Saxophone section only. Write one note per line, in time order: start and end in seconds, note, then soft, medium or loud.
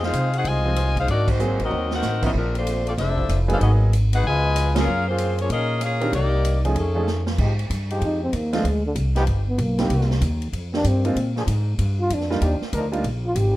0.05 0.33 D#4 medium
0.05 0.33 G#4 medium
0.05 0.33 C5 medium
0.05 0.33 F5 medium
0.38 0.46 D#4 medium
0.38 0.46 G#4 medium
0.38 0.46 C5 medium
0.38 0.46 F#5 loud
0.48 0.98 F4 loud
0.48 0.98 C5 medium
0.48 0.98 D#5 loud
0.48 0.98 G#5 loud
1.00 1.09 D#4 medium
1.00 1.09 G#4 medium
1.00 1.09 C5 medium
1.00 1.09 F5 loud
1.11 1.28 A#3 medium
1.11 1.28 D#4 medium
1.11 1.28 F#4 medium
1.11 1.28 D5 medium
1.31 1.61 A#3 medium
1.31 1.61 D#4 medium
1.31 1.61 F#4 medium
1.31 1.61 C5 medium
1.63 1.91 C4 medium
1.63 1.91 F#4 medium
1.63 1.91 A#4 medium
1.63 1.91 D#5 medium
1.95 2.25 D#4 medium
1.95 2.24 A#4 medium
1.95 2.25 C5 medium
1.95 2.25 F#5 loud
2.25 2.30 C4 medium
2.25 2.30 F#4 medium
2.25 2.30 A#4 medium
2.25 2.30 D#5 medium
2.37 2.55 F3 medium
2.37 2.54 C4 medium
2.37 2.54 D4 medium
2.37 2.54 A#4 medium
2.58 2.86 A3 medium
2.58 2.86 D4 medium
2.58 2.85 F4 medium
2.58 2.85 C5 medium
2.89 2.94 C4 medium
2.89 2.93 F4 medium
2.89 2.94 A4 medium
2.89 2.93 D5 medium
2.99 3.39 D4 medium
2.99 3.39 A4 medium
2.99 3.39 C5 medium
2.99 3.39 E5 loud
3.53 3.57 D4 medium
3.53 3.57 A4 medium
3.53 3.57 C5 medium
3.53 3.57 F5 medium
3.63 3.72 B3 medium
3.63 3.71 F#4 medium
3.63 3.71 G#4 medium
3.63 3.71 D#5 medium
4.15 4.24 D#4 medium
4.15 4.24 G#4 medium
4.15 4.24 B4 medium
4.15 4.24 F#5 loud
4.27 4.73 F4 medium
4.27 4.74 B4 medium
4.27 4.73 D#5 medium
4.27 4.73 G#5 loud
4.79 5.08 C#4 loud
4.79 5.08 G#4 medium
4.79 5.08 A#4 loud
4.79 5.08 F5 loud
5.09 5.37 A#3 medium
5.09 5.37 F4 medium
5.09 5.37 G#4 medium
5.09 5.37 C5 medium
5.42 5.51 A#3 medium
5.42 5.52 F4 medium
5.42 5.51 G#4 medium
5.42 5.51 C#5 medium
5.52 5.80 C#4 medium
5.52 5.80 G#4 medium
5.52 5.80 A#4 medium
5.52 5.80 D#5 loud
5.83 6.14 C#4 medium
5.83 6.14 G#4 medium
5.83 6.14 A#4 medium
5.83 6.14 F5 medium
6.14 6.61 A#3 medium
6.14 6.62 D#4 medium
6.14 6.62 G4 medium
6.14 6.61 D5 loud
6.78 7.25 D#3 medium
6.78 7.25 C#4 medium
6.78 7.25 G#4 medium
6.78 7.25 A4 medium